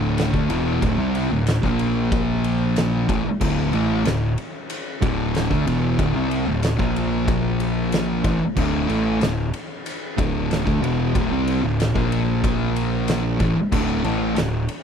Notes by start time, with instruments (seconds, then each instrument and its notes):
Already playing: picked electric bass D1, distorted electric guitar D2 A2 D3
0.18 snare, ride
0.33 picked electric bass D2, distorted electric guitar D3 A3, kick
0.49 picked electric bass E1, distorted electric guitar E2 B2 E3, ride
0.81 picked electric bass D1, distorted electric guitar D2 A2, kick, ride
0.98 picked electric bass C2, distorted electric guitar C3 G3 C4
1.15 ride
1.31 picked electric bass D1, distorted electric guitar D2 A2
1.47 snare, ride
1.63 picked electric bass A#1, distorted electric guitar A#2 F3 A#3, kick
1.79 ride
2.12 kick, ride
2.44 ride
2.76 snare, ride
3.09 picked electric bass A1, distorted electric guitar A2 E3, kick, ride
3.24 muted picked electric bass stroke, muted distorted electric guitar stroke
3.41 picked electric bass D1, distorted electric guitar D2 A2 D3, kick, crash
3.73 picked electric bass A1, distorted electric guitar A2 E3 A3, ride
4.05 picked electric bass D1, distorted electric guitar D2 A2, snare, ride
4.38 ride
4.70 ride
5.02 picked electric bass D1, distorted electric guitar D2 A2 D3, kick, ride
5.35 snare, ride
5.50 picked electric bass D2, distorted electric guitar D3 A3, kick
5.66 picked electric bass E1, distorted electric guitar E2 B2 E3, ride
5.98 picked electric bass D1, distorted electric guitar D2 A2, kick, ride
6.14 picked electric bass C2, distorted electric guitar C3 G3 C4
6.31 ride
6.46 picked electric bass D1, distorted electric guitar D2 A2
6.63 snare, ride
6.78 picked electric bass A#1, distorted electric guitar A#2 F3 A#3, kick
6.96 ride
7.28 kick, ride
7.60 ride
7.92 snare, ride
8.24 picked electric bass A1, distorted electric guitar A2 E3, kick, ride
8.40 muted picked electric bass stroke, muted distorted electric guitar stroke
8.56 picked electric bass D1, distorted electric guitar D2 A2 D3, kick, crash
8.88 picked electric bass A1, distorted electric guitar A2 E3 A3, ride
9.21 picked electric bass D1, distorted electric guitar D2 A2, snare, ride
9.54 ride
9.86 ride
10.17 picked electric bass D1, distorted electric guitar D2 A2 D3, kick, ride
10.51 snare, ride
10.66 picked electric bass D2, distorted electric guitar D3 A3, kick
10.82 picked electric bass E1, distorted electric guitar E2 B2 E3, ride
11.14 picked electric bass D1, distorted electric guitar D2 A2, kick, ride
11.30 picked electric bass C2, distorted electric guitar C3 G3 C4
11.48 ride
11.62 picked electric bass D1, distorted electric guitar D2 A2
11.80 snare, ride
11.95 picked electric bass A#1, distorted electric guitar A#2 F3 A#3, kick
12.12 ride
12.44 kick, ride
12.76 ride
13.08 snare, ride
13.40 picked electric bass A1, distorted electric guitar A2 E3, kick, ride
13.55 muted picked electric bass stroke, muted distorted electric guitar stroke
13.72 picked electric bass D1, distorted electric guitar D2 A2 D3, kick, crash
14.04 picked electric bass A1, distorted electric guitar A2 E3 A3, ride
14.36 picked electric bass D1, distorted electric guitar D2 A2, snare, ride
14.69 ride